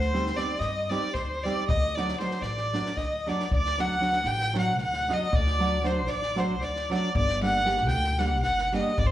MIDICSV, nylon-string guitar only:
0, 0, Header, 1, 2, 480
1, 0, Start_track
1, 0, Tempo, 520833
1, 1558, Time_signature, 7, 3, 24, 8
1, 8400, End_track
2, 0, Start_track
2, 0, Title_t, "Nylon-string guitar"
2, 0, Program_c, 0, 24
2, 119, Note_on_c, 0, 55, 62
2, 122, Note_on_c, 0, 60, 49
2, 128, Note_on_c, 0, 63, 64
2, 134, Note_on_c, 0, 67, 66
2, 278, Note_off_c, 0, 55, 0
2, 280, Note_off_c, 0, 60, 0
2, 282, Note_off_c, 0, 63, 0
2, 285, Note_off_c, 0, 67, 0
2, 335, Note_on_c, 0, 55, 50
2, 341, Note_on_c, 0, 60, 55
2, 345, Note_on_c, 0, 63, 50
2, 353, Note_on_c, 0, 67, 56
2, 492, Note_off_c, 0, 55, 0
2, 495, Note_off_c, 0, 60, 0
2, 497, Note_off_c, 0, 63, 0
2, 501, Note_off_c, 0, 67, 0
2, 830, Note_on_c, 0, 55, 62
2, 836, Note_on_c, 0, 60, 61
2, 840, Note_on_c, 0, 63, 63
2, 849, Note_on_c, 0, 67, 63
2, 993, Note_off_c, 0, 55, 0
2, 995, Note_off_c, 0, 60, 0
2, 997, Note_off_c, 0, 63, 0
2, 1002, Note_off_c, 0, 67, 0
2, 1334, Note_on_c, 0, 55, 63
2, 1339, Note_on_c, 0, 60, 60
2, 1341, Note_on_c, 0, 63, 52
2, 1346, Note_on_c, 0, 67, 84
2, 1496, Note_off_c, 0, 55, 0
2, 1497, Note_off_c, 0, 60, 0
2, 1500, Note_off_c, 0, 63, 0
2, 1501, Note_off_c, 0, 67, 0
2, 1815, Note_on_c, 0, 54, 68
2, 1820, Note_on_c, 0, 57, 51
2, 1823, Note_on_c, 0, 62, 54
2, 1829, Note_on_c, 0, 66, 63
2, 1967, Note_off_c, 0, 54, 0
2, 1968, Note_off_c, 0, 57, 0
2, 1970, Note_off_c, 0, 62, 0
2, 1974, Note_off_c, 0, 66, 0
2, 2025, Note_on_c, 0, 54, 51
2, 2029, Note_on_c, 0, 57, 51
2, 2033, Note_on_c, 0, 62, 42
2, 2043, Note_on_c, 0, 66, 61
2, 2178, Note_off_c, 0, 54, 0
2, 2178, Note_off_c, 0, 57, 0
2, 2181, Note_off_c, 0, 62, 0
2, 2186, Note_off_c, 0, 66, 0
2, 2518, Note_on_c, 0, 54, 58
2, 2519, Note_on_c, 0, 57, 60
2, 2528, Note_on_c, 0, 62, 57
2, 2532, Note_on_c, 0, 66, 60
2, 2677, Note_off_c, 0, 54, 0
2, 2677, Note_off_c, 0, 57, 0
2, 2682, Note_off_c, 0, 62, 0
2, 2683, Note_off_c, 0, 66, 0
2, 3007, Note_on_c, 0, 54, 57
2, 3011, Note_on_c, 0, 57, 54
2, 3017, Note_on_c, 0, 62, 61
2, 3026, Note_on_c, 0, 66, 65
2, 3172, Note_off_c, 0, 54, 0
2, 3174, Note_off_c, 0, 57, 0
2, 3177, Note_off_c, 0, 62, 0
2, 3182, Note_off_c, 0, 66, 0
2, 3482, Note_on_c, 0, 54, 60
2, 3490, Note_on_c, 0, 57, 56
2, 3498, Note_on_c, 0, 62, 61
2, 3502, Note_on_c, 0, 66, 69
2, 3639, Note_off_c, 0, 54, 0
2, 3644, Note_off_c, 0, 57, 0
2, 3648, Note_off_c, 0, 62, 0
2, 3649, Note_off_c, 0, 66, 0
2, 3689, Note_on_c, 0, 54, 52
2, 3694, Note_on_c, 0, 57, 50
2, 3700, Note_on_c, 0, 62, 51
2, 3706, Note_on_c, 0, 66, 66
2, 3849, Note_off_c, 0, 54, 0
2, 3851, Note_off_c, 0, 57, 0
2, 3854, Note_off_c, 0, 62, 0
2, 3857, Note_off_c, 0, 66, 0
2, 4179, Note_on_c, 0, 54, 72
2, 4188, Note_on_c, 0, 57, 61
2, 4192, Note_on_c, 0, 62, 66
2, 4199, Note_on_c, 0, 66, 67
2, 4347, Note_off_c, 0, 54, 0
2, 4351, Note_off_c, 0, 57, 0
2, 4353, Note_off_c, 0, 62, 0
2, 4357, Note_off_c, 0, 66, 0
2, 4683, Note_on_c, 0, 54, 63
2, 4692, Note_on_c, 0, 57, 64
2, 4696, Note_on_c, 0, 62, 64
2, 4702, Note_on_c, 0, 66, 77
2, 4849, Note_off_c, 0, 54, 0
2, 4854, Note_off_c, 0, 57, 0
2, 4856, Note_off_c, 0, 62, 0
2, 4859, Note_off_c, 0, 66, 0
2, 5148, Note_on_c, 0, 54, 62
2, 5156, Note_on_c, 0, 57, 55
2, 5161, Note_on_c, 0, 62, 49
2, 5170, Note_on_c, 0, 66, 68
2, 5312, Note_off_c, 0, 54, 0
2, 5316, Note_off_c, 0, 57, 0
2, 5318, Note_off_c, 0, 62, 0
2, 5323, Note_off_c, 0, 66, 0
2, 5363, Note_on_c, 0, 54, 58
2, 5370, Note_on_c, 0, 57, 44
2, 5377, Note_on_c, 0, 62, 55
2, 5382, Note_on_c, 0, 66, 57
2, 5525, Note_off_c, 0, 54, 0
2, 5528, Note_off_c, 0, 57, 0
2, 5532, Note_off_c, 0, 62, 0
2, 5534, Note_off_c, 0, 66, 0
2, 5857, Note_on_c, 0, 54, 63
2, 5862, Note_on_c, 0, 57, 66
2, 5863, Note_on_c, 0, 62, 66
2, 5871, Note_on_c, 0, 66, 72
2, 6025, Note_off_c, 0, 54, 0
2, 6026, Note_off_c, 0, 57, 0
2, 6027, Note_off_c, 0, 62, 0
2, 6032, Note_off_c, 0, 66, 0
2, 6355, Note_on_c, 0, 54, 78
2, 6364, Note_on_c, 0, 57, 58
2, 6369, Note_on_c, 0, 62, 62
2, 6371, Note_on_c, 0, 66, 74
2, 6524, Note_off_c, 0, 54, 0
2, 6529, Note_off_c, 0, 57, 0
2, 6530, Note_off_c, 0, 62, 0
2, 6532, Note_off_c, 0, 66, 0
2, 6835, Note_on_c, 0, 55, 62
2, 6840, Note_on_c, 0, 58, 55
2, 6849, Note_on_c, 0, 62, 65
2, 6854, Note_on_c, 0, 67, 59
2, 6994, Note_off_c, 0, 55, 0
2, 6997, Note_off_c, 0, 58, 0
2, 7001, Note_off_c, 0, 62, 0
2, 7004, Note_off_c, 0, 67, 0
2, 7048, Note_on_c, 0, 55, 53
2, 7053, Note_on_c, 0, 58, 55
2, 7059, Note_on_c, 0, 62, 60
2, 7063, Note_on_c, 0, 67, 65
2, 7206, Note_off_c, 0, 55, 0
2, 7209, Note_off_c, 0, 58, 0
2, 7212, Note_off_c, 0, 62, 0
2, 7214, Note_off_c, 0, 67, 0
2, 7539, Note_on_c, 0, 55, 69
2, 7543, Note_on_c, 0, 58, 66
2, 7550, Note_on_c, 0, 62, 57
2, 7555, Note_on_c, 0, 67, 77
2, 7705, Note_off_c, 0, 55, 0
2, 7707, Note_off_c, 0, 58, 0
2, 7711, Note_off_c, 0, 62, 0
2, 7713, Note_off_c, 0, 67, 0
2, 8039, Note_on_c, 0, 55, 73
2, 8046, Note_on_c, 0, 58, 56
2, 8048, Note_on_c, 0, 62, 68
2, 8056, Note_on_c, 0, 67, 66
2, 8206, Note_off_c, 0, 55, 0
2, 8208, Note_off_c, 0, 58, 0
2, 8211, Note_off_c, 0, 62, 0
2, 8213, Note_off_c, 0, 67, 0
2, 8400, End_track
0, 0, End_of_file